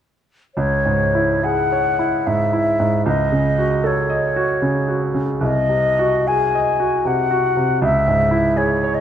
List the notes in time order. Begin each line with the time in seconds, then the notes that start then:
0.55 C#2 C#5
0.85 G#2
1.15 E4
1.43 G#4 F#5
1.72 C#5
1.99 E4
2.27 G#2 E5
2.53 E4
2.80 G#2
3.06 C#2 D#5
3.32 C#3
3.58 F#4
3.84 A4 C#5
4.10 D#5
4.36 F#4
4.62 C#3
4.88 F#4
5.14 C#3
5.41 C2 D#5
5.69 C3
5.99 F#4
6.27 G#4 G#5
6.55 D#5
6.80 F#4
7.05 C3 F#5
7.31 F#4
7.57 C3
7.82 C#2 E5
8.08 G#2
8.31 E4
8.56 G#4 C#5
8.84 C#5
8.94 D#5